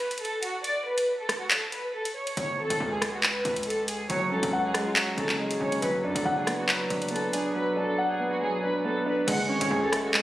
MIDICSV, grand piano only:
0, 0, Header, 1, 2, 480
1, 0, Start_track
1, 0, Tempo, 431655
1, 715, Time_signature, 4, 2, 24, 8
1, 11365, End_track
2, 0, Start_track
2, 0, Title_t, "Grand piano"
2, 0, Program_c, 0, 0
2, 2831, Control_c, 0, 64, 127
2, 4551, Note_on_c, 0, 54, 94
2, 4791, Note_on_c, 0, 61, 77
2, 5036, Note_on_c, 0, 78, 91
2, 5282, Note_on_c, 0, 56, 79
2, 5497, Note_off_c, 0, 54, 0
2, 5514, Note_on_c, 0, 54, 88
2, 5732, Note_off_c, 0, 61, 0
2, 5749, Note_on_c, 0, 61, 84
2, 5973, Note_off_c, 0, 56, 0
2, 5989, Note_on_c, 0, 56, 84
2, 6210, Note_off_c, 0, 61, 0
2, 6227, Note_on_c, 0, 61, 87
2, 6236, Note_off_c, 0, 78, 0
2, 6456, Note_off_c, 0, 54, 0
2, 6471, Note_off_c, 0, 61, 0
2, 6472, Note_off_c, 0, 56, 0
2, 6473, Note_on_c, 0, 54, 91
2, 6491, Control_c, 0, 64, 0
2, 6683, Control_c, 0, 64, 127
2, 6720, Note_on_c, 0, 62, 84
2, 6952, Note_on_c, 0, 78, 96
2, 7200, Note_on_c, 0, 59, 82
2, 7409, Note_off_c, 0, 54, 0
2, 7425, Note_on_c, 0, 54, 91
2, 7660, Note_off_c, 0, 62, 0
2, 7677, Note_on_c, 0, 62, 76
2, 7889, Note_off_c, 0, 59, 0
2, 7905, Note_on_c, 0, 59, 91
2, 8143, Note_off_c, 0, 62, 0
2, 8154, Note_off_c, 0, 78, 0
2, 8159, Note_on_c, 0, 62, 87
2, 8379, Note_off_c, 0, 54, 0
2, 8395, Note_on_c, 0, 54, 89
2, 8619, Note_off_c, 0, 62, 0
2, 8636, Note_on_c, 0, 62, 85
2, 8877, Note_on_c, 0, 78, 97
2, 9098, Note_off_c, 0, 59, 0
2, 9115, Note_on_c, 0, 59, 80
2, 9340, Note_off_c, 0, 54, 0
2, 9357, Note_on_c, 0, 54, 83
2, 9581, Note_off_c, 0, 62, 0
2, 9597, Note_on_c, 0, 62, 76
2, 9819, Note_off_c, 0, 59, 0
2, 9836, Note_on_c, 0, 59, 93
2, 10060, Note_off_c, 0, 62, 0
2, 10076, Note_off_c, 0, 78, 0
2, 10076, Note_on_c, 0, 62, 86
2, 10308, Note_on_c, 0, 56, 97
2, 10316, Note_off_c, 0, 54, 0
2, 10316, Note_off_c, 0, 59, 0
2, 10316, Note_off_c, 0, 62, 0
2, 10328, Control_c, 0, 64, 0
2, 10544, Control_c, 0, 64, 127
2, 10550, Note_on_c, 0, 61, 88
2, 10797, Note_on_c, 0, 68, 89
2, 11037, Note_on_c, 0, 57, 85
2, 11258, Note_off_c, 0, 56, 0
2, 11275, Note_on_c, 0, 56, 95
2, 11365, Note_off_c, 0, 56, 0
2, 11365, Note_off_c, 0, 57, 0
2, 11365, Note_off_c, 0, 61, 0
2, 11365, Note_off_c, 0, 68, 0
2, 11365, End_track
0, 0, End_of_file